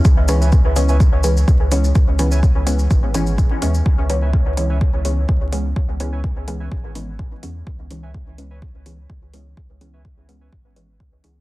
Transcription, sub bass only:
\new Staff \with { instrumentName = "Sub bass" } { \clef bass \time 4/4 \key cis \minor \tempo 4 = 126 cis,2. cis,4 | cis,2 gis,,4 r8 dis,8 | cis,2. cis,4 | cis,2 gis,,4 r8 e,8 |
cis,2. cis,4 | cis,2 gis,,4 cis,8 cis,8 | }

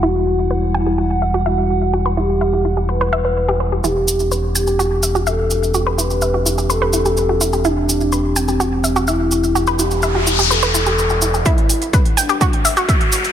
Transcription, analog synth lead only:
\new Staff \with { instrumentName = "Analog synth lead" } { \time 4/4 \key e \minor \tempo 4 = 126 fis'4. e'4. fis'4~ | fis'8 g'4. b'2 | g'4. g'4. a'4~ | a'8 b'4. a'2 |
d'4. c'4. e'4~ | e'8 g'4. a'2 | e'4. d'4. fis'4 | }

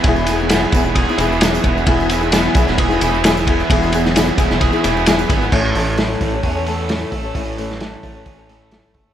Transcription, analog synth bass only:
\new Staff \with { instrumentName = "Analog synth bass" } { \clef bass \time 4/4 \key a \major \tempo 4 = 132 e,,4. e,,16 e,,16 e,,16 r16 e,,4 e,,8 | e,,4. b,,16 e,,16 e,,8 e,,4. | e,,4. e,,16 e,,16 e,,16 r16 e,,4 gis,,8 | a,,8 a,,4 a,,8 e,4. a,,8 |
a,,4. a,,8 a,,4. fis,,8 | }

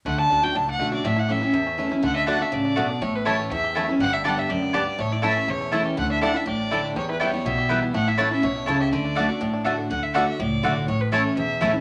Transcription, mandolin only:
\new Staff \with { instrumentName = "Mandolin" } { \time 4/4 \key d \major \tempo 4 = 244 r1 | r1 | r4 <a fis' d'' fis''>8 r4. <a fis' d'' fis''>8 r8 | r4 <a e' cis'' a''>8 r4. <a e' cis'' a''>8 r8 |
r4 <b g' d'' a''>8 r4. <b g' d'' a''>8 r8 | r4 <a e' cis'' a''>8 r4. <a e' cis'' a''>8 r8 | r4 <a e' d'' a''>8 r4. <a e' d'' a''>8 r8 | r4 <b e' b' g''>8 r4. <b e' b' g''>8 r8 |
r4 <a e' cis'' a''>8 r4. <a e' cis'' a''>8 r8 | r4 <a fis' d'' fis''>8 r4. <a fis' d'' fis''>8 r8 | r4 <a fis' d'' fis''>8 r4. <a fis' d'' fis''>8 r8 | r4 <a e' cis'' a''>8 r4. <a e' cis'' a''>8 r8 | }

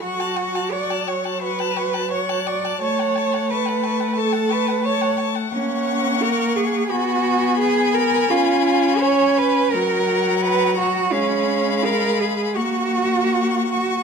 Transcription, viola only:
\new Staff \with { instrumentName = "Viola" } { \time 4/4 \key fis \minor \tempo 4 = 86 fis1 | a1 | \key fis \major ais2 b2 | cis'2 fis2 |
gis2 ais2 | }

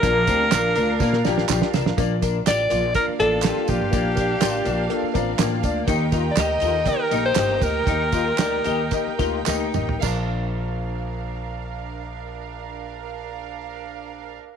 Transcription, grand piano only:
<<
  \new Staff \with { instrumentName = "Grand piano" } { \time 4/4 \key bes \major \tempo 4 = 121 <d' f' bes'>8 <d' f' g'>8 <d' f' bes'>8 <d' f' bes'>8 <d' f' bes'>8 <d' f' g'>8 <d' f' g'>8 <d' f' bes'>8 | <bes d' f' d''>8 <bes d' f' bes'>8 <bes d' f' d''>8 <bes d' f' d''>8 <bes d' f' d''>8 <bes d' f' d''>8 <bes d' f' g'>8 <bes d' f' d''>8 | <bes d' f' d''>8 <bes d' f' d''>8 <bes d' f' d''>8 <bes d' f' d''>8 <bes d' f' a'>8 <bes d' f' d'' bes''>8 <bes d' f' d'' g''>8 <bes d' f' d'' f''>8 | <bes ees' g' ees''>8 <bes ees' g' ees''>8 <bes ees' g' ees''>8 <bes ees' g' a'>8 <bes ees' g' ees''>8 <bes ees' g' ees''>8 <bes ees' g' ees''>8 <bes ees' g' ees''>8 |
<bes ees' g' ees''>8 <bes ees' g' ees''>8 <bes ees' g' d''>8 <bes ees' g' ees''>8 <bes ees' g' ees''>8 <bes ees' g' bes'>8 <bes ees' g' ees''>8 <bes ees' g' ees''>8 | <bes d' f' d''>1~ | <bes d' f' d''>1 | }
  \new Staff \with { instrumentName = "Grand piano" } { \clef bass \time 4/4 \key bes \major bes,4. r2 r8 | bes,4. r2 r8 | bes,4. r2 r8 | ees4. r2 r8 |
ees4. r2 r8 | bes,,1~ | bes,,1 | }
>>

